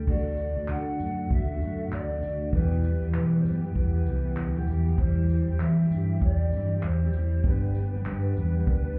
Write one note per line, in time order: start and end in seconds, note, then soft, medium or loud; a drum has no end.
0.06 0.48 D2 loud
0.06 0.36 D3 medium
0.06 2.51 D3 medium
0.06 0.36 A3 medium
0.06 2.51 A3 medium
0.06 0.37 D4 medium
0.06 0.38 F#4 medium
0.06 2.51 F#4 medium
0.06 0.72 D5 loud
0.06 kick medium
0.06 crash loud
0.37 0.56 D3 medium
0.37 0.56 A3 medium
0.37 0.56 D4 medium
0.37 0.54 F#4 medium
0.37 tambourine medium
0.55 0.66 D2 medium
0.55 0.69 A3 soft
0.55 0.69 D4 medium
0.55 0.68 F#4 medium
0.68 0.94 D3 loud
0.68 0.99 D3 medium
0.68 1.00 A3 medium
0.68 1.00 D4 medium
0.68 1.01 F#4 medium
0.68 1.31 F#5 loud
0.68 clap loud
1.00 1.25 F#2 medium
1.00 1.18 D3 medium
1.00 1.18 A3 medium
1.00 1.19 D4 medium
1.00 1.17 F#4 medium
1.00 tambourine medium
1.18 1.50 A3 soft
1.18 1.49 D4 medium
1.18 1.48 F#4 medium
1.31 1.56 D2 medium
1.31 1.89 E5 loud
1.31 kick loud
1.49 1.60 A3 soft
1.49 1.61 D4 medium
1.49 1.61 F#4 medium
1.60 1.86 F#2 medium
1.60 1.79 D3 medium
1.60 1.79 A3 medium
1.60 1.79 D4 medium
1.60 1.79 F#4 medium
1.60 tambourine medium
1.80 2.09 A3 soft
1.80 2.09 D4 medium
1.80 2.09 F#4 medium
1.92 2.17 D2 medium
1.92 2.49 D5 loud
1.92 clap loud
2.10 2.20 D3 medium
2.10 2.21 A3 medium
2.10 2.21 D4 medium
2.10 2.22 F#4 medium
2.21 2.47 D2 medium
2.21 2.52 D3 medium
2.21 2.53 A3 medium
2.21 2.53 D4 medium
2.21 2.53 F#4 medium
2.21 tambourine medium
2.53 2.93 E2 loud
2.53 2.84 E2 medium
2.53 2.84 B2 medium
2.53 2.83 E3 medium
2.53 7.41 E3 medium
2.53 2.84 G3 medium
2.53 4.97 B3 medium
2.53 2.85 B3 medium
2.53 7.41 G4 medium
2.53 2.85 G4 medium
2.53 3.36 B4 loud
2.53 kick loud
2.84 3.02 E3 medium
2.84 3.03 G3 medium
2.84 3.02 B3 medium
2.84 3.01 G4 medium
2.84 tambourine medium
3.02 3.12 E2 medium
3.02 3.14 E3 soft
3.02 3.14 G3 medium
3.02 3.15 B3 medium
3.02 3.14 G4 medium
3.14 3.45 E2 medium
3.14 3.45 B2 medium
3.14 3.39 E3 loud
3.14 3.43 E3 medium
3.14 3.44 G3 medium
3.14 3.44 B3 medium
3.14 3.45 G4 medium
3.14 clap loud
3.40 3.62 E3 medium
3.40 3.48 C5 medium
3.44 3.70 F#2 medium
3.44 3.61 G3 medium
3.44 3.61 B3 medium
3.44 3.60 G4 medium
3.44 3.76 B4 medium
3.44 tambourine medium
3.61 3.94 E3 medium
3.61 3.94 G3 soft
3.61 3.93 B3 medium
3.61 3.92 G4 medium
3.76 4.01 E2 loud
3.76 4.64 B4 medium
3.76 kick medium
3.94 4.05 E3 medium
3.94 4.06 G3 soft
3.94 4.06 B3 soft
3.94 4.06 G4 medium
4.06 4.37 C2 medium
4.06 4.25 E3 medium
4.06 4.25 G3 medium
4.06 4.25 B3 medium
4.06 4.24 G4 medium
4.06 tambourine medium
4.25 4.54 E3 soft
4.25 4.54 G3 soft
4.25 4.54 B3 medium
4.25 4.54 G4 medium
4.37 4.62 D2 loud
4.37 clap loud
4.55 4.68 E2 medium
4.55 4.68 B2 medium
4.55 4.66 E3 medium
4.55 4.67 G3 medium
4.55 4.67 B3 medium
4.55 4.68 G4 medium
4.67 4.93 E2 medium
4.67 4.86 E3 medium
4.67 4.86 G3 medium
4.67 4.86 B3 medium
4.67 4.85 G4 medium
4.67 tambourine medium
4.86 4.97 E3 soft
4.86 4.98 G3 soft
4.86 4.99 B3 medium
4.86 4.98 G4 medium
4.98 5.39 E2 loud
4.98 5.27 E3 medium
4.98 5.28 G3 medium
4.98 7.42 C4 medium
4.98 5.28 C4 medium
4.98 5.29 G4 medium
4.98 5.62 C5 medium
4.98 kick loud
5.28 5.47 E3 medium
5.28 5.48 G3 medium
5.28 5.48 C4 medium
5.28 5.46 G4 medium
5.28 tambourine medium
5.47 5.58 E2 medium
5.47 5.59 G3 soft
5.47 5.60 C4 medium
5.47 5.60 G4 medium
5.60 5.85 E3 medium
5.60 5.91 E3 medium
5.60 5.91 G3 medium
5.60 5.91 C4 medium
5.60 5.91 G4 medium
5.60 6.25 E5 medium
5.60 clap loud
5.90 6.16 G2 loud
5.90 6.10 E3 medium
5.90 6.10 G3 medium
5.90 6.10 C4 medium
5.90 tambourine medium
5.95 6.09 G4 medium
6.10 6.41 G3 soft
6.10 6.41 C4 medium
6.10 6.40 G4 medium
6.22 6.47 E2 loud
6.22 6.87 D5 loud
6.22 kick loud
6.41 6.53 G3 soft
6.41 6.53 C4 medium
6.41 6.53 G4 medium
6.52 6.77 G2 medium
6.52 6.71 E3 medium
6.52 6.72 G3 medium
6.52 6.72 C4 medium
6.52 6.72 G4 medium
6.52 tambourine medium
6.73 7.03 G3 soft
6.73 7.02 C4 medium
6.73 7.02 G4 medium
6.83 7.08 E2 medium
6.83 7.49 C5 medium
6.83 clap loud
7.03 7.12 E3 medium
7.03 7.13 G3 medium
7.03 7.14 C4 medium
7.03 7.14 G4 medium
7.13 7.39 E2 medium
7.13 7.44 E3 medium
7.13 7.44 G3 medium
7.13 7.45 C4 medium
7.13 7.45 G4 medium
7.13 tambourine medium
7.43 7.84 G1 loud
7.43 7.75 G2 medium
7.43 7.75 D3 medium
7.43 8.99 G3 medium
7.43 7.73 G3 medium
7.43 7.74 B3 medium
7.43 8.99 D4 medium
7.43 7.75 D4 medium
7.43 7.76 G4 medium
7.43 8.99 B4 medium
7.43 8.38 B4 loud
7.43 kick loud
7.75 7.93 G3 medium
7.75 7.93 B3 medium
7.75 7.92 D4 medium
7.75 7.91 G4 medium
7.75 tambourine medium
7.93 8.04 G1 medium
7.93 8.04 G3 soft
7.93 8.05 B3 soft
7.93 8.05 D4 medium
7.93 8.05 G4 medium
8.05 8.36 G2 medium
8.05 8.31 G2 loud
8.05 8.36 D3 medium
8.05 8.34 G3 medium
8.05 8.35 B3 medium
8.05 8.35 D4 medium
8.05 8.36 G4 medium
8.05 clap loud
8.35 8.62 E2 medium
8.35 8.54 G3 medium
8.35 8.55 B3 medium
8.35 8.54 D4 medium
8.35 8.53 G4 medium
8.35 8.66 B4 medium
8.35 tambourine medium
8.54 8.84 G3 soft
8.54 8.83 B3 medium
8.54 8.83 D4 medium
8.54 8.82 G4 medium
8.67 8.92 D2 loud
8.67 8.99 B4 medium
8.67 kick loud
8.83 8.94 G3 soft
8.83 8.95 B3 soft
8.83 8.96 D4 medium
8.83 8.96 G4 medium
8.95 8.99 G3 medium
8.95 8.99 B3 soft